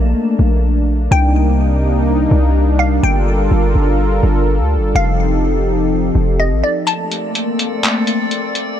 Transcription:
Already playing: A#1 A3 A#3 D4 A5
0.39 A#1
1.11 C2 C3 G3 A#3 D#4 G5
2.31 C2
2.79 F5
3.03 G1 F4 A4 A#4 G5
3.51 G1
3.75 G1
4.23 G1
4.59 D2
4.77 G1
4.95 F1 F3 C4 D#4 G4 F5
6.15 F1
6.40 D#5
6.51 A1
6.64 D5
6.87 A3 A#3 C4 A4 D5 A5, closed hi-hat
7.12 closed hi-hat
7.35 closed hi-hat
7.59 closed hi-hat
7.83 clap, closed hi-hat
8.07 closed hi-hat
8.31 closed hi-hat
8.55 closed hi-hat

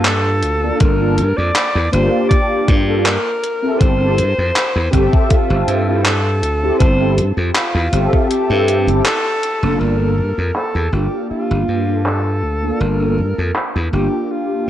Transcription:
Already playing: G2
0.05 A4, clap, closed hi-hat
0.43 D2, closed hi-hat
0.62 A#3 D4 F4 A4
0.80 G1 A#4, kick, closed hi-hat
1.00 A#3 D4 F4 A4
1.18 G2, closed hi-hat
1.37 F2 D5
1.56 clap, closed hi-hat
1.75 E2
1.91 G1 A#3 D4 F4 G4 C5, closed hi-hat
2.29 D5, kick, closed hi-hat
2.68 G2, kick, closed hi-hat
2.87 A#3 D4 F4 A4
3.04 A#4, clap, closed hi-hat
3.44 closed hi-hat
3.62 C4 E4 G4 A4
3.79 G1 C5, kick, closed hi-hat
4.00 C4 E4 G4 A4
4.18 G2, closed hi-hat
4.38 F2
4.56 clap, closed hi-hat
4.76 E2
4.91 G1 C4 G4 A4 E5, kick, closed hi-hat
5.13 kick
5.29 F4, muted slap bass stroke, kick, closed hi-hat
5.50 G1
5.68 G2, closed hi-hat
5.87 C4 E4 G4 A4
6.04 A4, clap, closed hi-hat
6.42 D2, closed hi-hat
6.63 C4 E4 G4 A4
6.79 G1 C5, kick, closed hi-hat
7.00 C4 E4 G4 A4
7.17 G2, closed hi-hat
7.37 F2
7.54 F4, clap, closed hi-hat
7.75 E2
7.91 G1 C4 G4 A4 E5, closed hi-hat
8.13 kick
8.28 G4, closed hi-hat
8.50 G2
8.68 closed hi-hat
8.87 G1 C4 E4 G4 A4, closed hi-hat
9.05 A4, clap, closed hi-hat
9.43 closed hi-hat
9.62 F1 A#3 D4 F4 A4
9.80 G1 A#4
10.00 A#3 D4 F4 A4
10.18 G2
10.38 F2
10.55 A4, clap
10.75 E2
10.91 G1 A#3 D4 F4 G4
11.30 F4, muted slap bass stroke
11.51 G1
11.68 G2
11.88 A#3 D4 F4 A4
12.06 A4, clap
12.43 D2
12.62 A#3 D4 F4 A4
12.80 G1 A#4
12.99 A#3 D4 F4 A4
13.18 G2
13.38 F2
13.55 clap
13.76 E2
13.91 G1 A#3 D4 F4 G4
14.31 F4

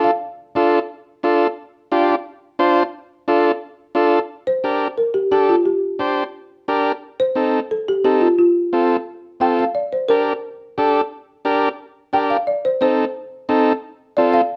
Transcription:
Already playing: D4 F4 A4
0.04 F5
0.55 D4 F4 A4
1.23 D4 F4 A4
1.92 D4 F4 G4
2.59 D4 F4 C5
3.28 D4 F4 A4
3.95 D4 F4 A4
4.47 C5
4.64 D4 G4 A#4
4.98 A#4
5.14 G4
5.31 D4 G4 A4
5.49 F4
5.65 G4
5.99 D4 G4 C5
6.68 D4 G4 A#4
7.20 C5
7.35 C4 D#4 A4
7.71 A4
7.88 G4
8.04 C4 D#4 G4 A4
8.21 F4
8.39 F4
8.73 C4 F4 A4
9.40 C4 F4 A4 G5
9.59 F5
9.75 D5
9.93 C5
10.09 D4 G4 A#4
10.78 D4 G4 A4
11.45 D4 G4 A#4
12.13 D4 G4 A#4 G5
12.30 F5
12.47 D5
12.65 C5
12.81 C4 D#4 A4 C5
13.49 C4 D#4 A4
14.17 C4 F4 A4 D5
14.34 F5

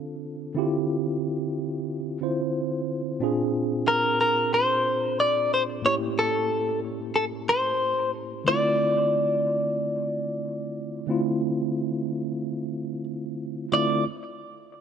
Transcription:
Already playing: D3 C4 D4 F4 A4
0.55 D3 C4 E4 F4 G4
2.21 D3 C4 E4 F4 C5
3.20 A#2 C4 D4 F4 G#4
3.88 A#4
4.21 A#4
4.54 C5
5.20 D5
5.54 C5
5.82 A2 A#3 C#4 E4 G4 C#5
6.19 A4
7.16 A4
7.49 C5
8.44 D3 A3 C4 E4 D5
8.49 F4
11.07 D3 A3 C4 E4
11.11 F4
13.72 D3 A3 C4 E4 F4 D5

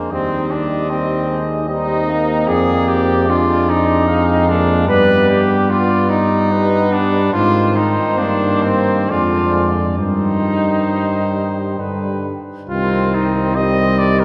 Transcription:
Already playing: G#3 A#3 C5
0.09 D#2 G3 C4 D#4 D#5
0.51 D4
0.90 G3 C4
1.30 G#3
1.68 G3 C4 D#4 D#5
2.10 A#3
2.48 F2 G#4 D5
2.88 G4
3.28 G#3 D4 F4
3.69 D#4
4.07 G#3 C4 F5
4.49 A#3 D4
4.88 G2 G3 B3 B4 D5
5.29 G4
5.69 F4 D5
6.09 D#4
6.52 G3 B3 B4
6.93 D4
7.33 G#2 D#3 C4 F4 C5
7.76 D#4
8.18 G2 A#3 D4
8.63 C4
9.10 F2 D3 G#3 F4 D5
9.97 G2 D#3 G3 D#4 C5
11.79 G2 D3 G3 B4
12.69 C2 D#3 G3 C4 F4
13.15 D#4
13.55 D#3 G3 C4 D#5
13.99 D5
14.20 A#4

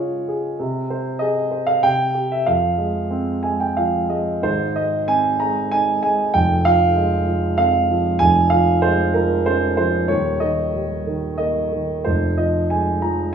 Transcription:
Already playing: C#3 F4 G#4 C#5 D#5 F5
0.28 G#4
0.59 C3
0.90 C5
1.19 G#4 D#5
1.51 C5
1.67 F5
1.83 C3 G5
2.14 G4
2.32 E5
2.46 F2 F5
2.78 G#3
3.10 C4
3.43 G#3 G#5
3.60 G5
3.77 F3 F5
4.09 G#3 D#5
4.43 G#1 G#2 C5
4.76 G#3 D#5
5.08 C4 G#5
5.40 G#3 A#5
5.71 D#4 G#5
6.03 G#3 G#5
6.34 F1 F2 G5
6.65 F3 F5
6.95 G#3
7.27 F3
7.58 C4 F5
7.89 F3
8.19 F1 F2 G#5
8.50 F3 F5
8.82 G#3 C5
9.14 F3 A#4
9.46 C#4 C5
9.77 F3 C5
10.08 D#1 D#2 C#5
10.40 D#3 D#5
10.74 G3
11.07 D#3
11.38 A#3 D#5
11.72 D#3
12.05 F1 F2 C5
12.37 F3 D#5
12.70 G#3 G#5
13.01 F3 A#5

